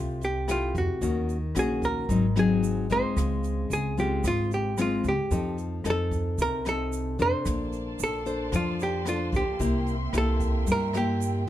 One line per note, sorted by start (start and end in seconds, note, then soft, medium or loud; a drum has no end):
0.00 0.71 C2 medium
0.00 0.99 C3 soft
0.00 0.44 A3 soft
0.00 0.24 F4 medium
0.00 0.44 G4 medium
0.21 0.48 G4 medium
0.21 closed hi-hat soft
0.21 shaker soft
0.48 0.97 A3 soft
0.48 0.98 E4 medium
0.48 0.77 F4 medium
0.48 0.98 G4 medium
0.48 cross-stick medium
0.48 closed hi-hat soft
0.48 shaker medium
0.75 0.87 F2 medium
0.75 1.27 F#4 medium
0.75 kick medium
0.75 closed hi-hat soft
0.75 shaker soft
1.01 1.51 D#2 medium
1.01 2.06 D#3 medium
1.01 1.36 A#3 soft
1.01 1.36 C#4 medium
1.01 1.37 F#4 medium
1.01 kick medium
1.01 closed hi-hat medium
1.01 shaker medium
1.29 closed hi-hat soft
1.29 shaker soft
1.55 2.05 A#1 medium
1.55 2.07 A#3 soft
1.55 2.07 C#4 soft
1.55 2.07 F#4 medium
1.55 cross-stick soft
1.55 closed hi-hat soft
1.55 shaker medium
1.59 1.85 G#4 medium
1.82 2.39 A#4 medium
1.82 kick soft
1.82 closed hi-hat soft
1.82 shaker soft
2.09 2.86 G#1 medium
2.09 3.14 G#2 medium
2.09 2.25 F#3 medium
2.09 2.25 C4 medium
2.09 2.26 D#4 medium
2.09 kick medium
2.09 closed hi-hat medium
2.09 shaker medium
2.36 2.85 F#3 medium
2.36 2.86 C4 medium
2.36 2.86 D#4 medium
2.36 2.88 G#4 medium
2.36 cross-stick medium
2.36 closed hi-hat soft
2.36 shaker soft
2.63 closed hi-hat soft
2.63 shaker medium
2.90 3.02 A#1 medium
2.90 3.93 G#3 medium
2.90 3.93 C4 medium
2.90 3.93 F4 medium
2.90 3.68 C5 medium
2.90 closed hi-hat soft
2.90 shaker soft
3.17 3.66 C#2 medium
3.17 4.21 C#3 medium
3.17 kick medium
3.17 cross-stick medium
3.17 closed hi-hat medium
3.17 shaker medium
3.44 closed hi-hat soft
3.44 shaker soft
3.70 4.20 C#2 medium
3.70 3.99 G#4 medium
3.70 closed hi-hat soft
3.70 shaker medium
3.97 4.73 G#3 medium
3.97 4.73 C4 soft
3.97 4.74 F4 medium
3.97 4.26 G4 medium
3.97 closed hi-hat soft
3.97 shaker soft
4.24 5.00 G#1 medium
4.24 5.28 G#2 soft
4.24 4.51 F4 medium
4.24 kick medium
4.24 cross-stick medium
4.24 closed hi-hat soft
4.24 shaker medium
4.51 4.80 G4 medium
4.51 closed hi-hat soft
4.51 shaker soft
4.78 5.12 G#3 medium
4.78 5.13 C4 medium
4.78 5.13 F4 medium
4.78 5.07 F4 medium
4.78 cross-stick medium
4.78 closed hi-hat soft
4.78 shaker medium
5.04 5.17 C#2 medium
5.04 kick medium
5.04 closed hi-hat soft
5.04 shaker soft
5.08 5.56 G4 medium
5.31 5.81 F2 medium
5.31 6.36 F3 medium
5.31 5.80 C4 soft
5.31 5.81 D#4 soft
5.31 5.81 A4 medium
5.31 kick medium
5.31 closed hi-hat medium
5.31 shaker medium
5.58 closed hi-hat soft
5.58 shaker soft
5.84 6.35 F2 medium
5.84 6.61 C4 medium
5.84 6.61 D#4 soft
5.84 6.61 A4 medium
5.84 cross-stick medium
5.84 closed hi-hat soft
5.84 shaker medium
5.90 6.41 A4 medium
6.11 kick medium
6.11 closed hi-hat soft
6.11 shaker soft
6.38 7.15 C2 medium
6.38 7.44 C3 medium
6.38 6.68 A#4 loud
6.38 kick medium
6.38 closed hi-hat soft
6.38 shaker medium
6.65 7.15 C4 soft
6.65 7.15 D#4 medium
6.65 7.15 A4 medium
6.65 7.17 A4 medium
6.65 cross-stick medium
6.65 closed hi-hat soft
6.65 shaker soft
6.93 closed hi-hat soft
6.93 shaker medium
7.19 7.31 F2 medium
7.19 8.22 D4 medium
7.19 8.22 A4 medium
7.19 8.22 C5 medium
7.19 8.03 C5 loud
7.19 closed hi-hat soft
7.19 shaker soft
7.45 7.96 A#1 medium
7.45 11.49 A#3 medium
7.45 8.50 A#3 soft
7.45 9.58 D5 medium
7.45 9.58 A5 medium
7.45 11.49 C6 medium
7.45 kick medium
7.45 cross-stick medium
7.45 closed hi-hat medium
7.45 shaker medium
7.72 closed hi-hat soft
7.72 shaker soft
7.98 8.49 A#1 medium
7.98 closed hi-hat soft
7.98 shaker medium
8.04 8.56 A4 medium
8.26 9.02 D4 medium
8.26 9.02 A4 medium
8.26 9.02 C5 medium
8.26 closed hi-hat soft
8.26 shaker soft
8.52 9.29 F2 medium
8.52 9.57 F3 medium
8.52 8.82 F4 medium
8.52 kick soft
8.52 cross-stick medium
8.52 closed hi-hat medium
8.52 shaker medium
8.79 9.08 G4 medium
8.79 closed hi-hat soft
8.79 shaker soft
9.05 9.41 D4 medium
9.05 9.35 F4 medium
9.05 9.41 A4 medium
9.05 9.42 C5 medium
9.05 cross-stick medium
9.05 closed hi-hat soft
9.05 shaker medium
9.32 9.45 A#1 medium
9.32 kick medium
9.32 closed hi-hat soft
9.32 shaker soft
9.36 9.85 G4 medium
9.59 10.10 C2 medium
9.59 10.65 C3 soft
9.59 9.95 A#3 soft
9.59 9.95 E4 medium
9.59 9.95 G4 medium
9.59 11.49 E5 medium
9.59 11.49 G5 medium
9.59 kick medium
9.59 closed hi-hat medium
9.59 shaker medium
9.87 closed hi-hat soft
9.87 shaker soft
10.13 10.63 C2 medium
10.13 10.90 A#3 medium
10.13 10.90 E4 soft
10.13 10.90 G4 soft
10.13 cross-stick medium
10.13 closed hi-hat soft
10.13 shaker medium
10.18 10.71 A4 medium
10.40 kick medium
10.40 closed hi-hat soft
10.40 shaker soft
10.66 11.43 G2 medium
10.66 11.49 G3 medium
10.66 kick medium
10.66 closed hi-hat soft
10.66 shaker medium
10.72 10.97 A#4 medium
10.93 11.43 A#3 medium
10.93 11.43 E4 medium
10.93 11.44 G4 medium
10.93 11.49 G4 medium
10.93 cross-stick medium
10.93 closed hi-hat soft
10.93 shaker soft
11.20 closed hi-hat soft
11.20 shaker medium